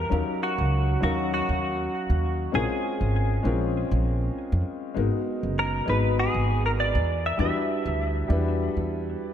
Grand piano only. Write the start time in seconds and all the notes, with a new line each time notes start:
Already playing: G3 D4 E4 B4 F#5
0.10 F#3 C#4 D#4 A#4 F5
1.01 F#3 C#4 D#4 A#4 F5
2.52 G#3 C4 C#4 F4 A#4
3.43 G#3 C4 C#4 F4 A#4
4.94 G#3 B3 D#4 F#4 A#4
5.86 G#3 B3 D#4 F#4 B4
7.37 G3 D4 E4 F#4
7.41 B4
8.28 G3 D4 E4 F#4 B4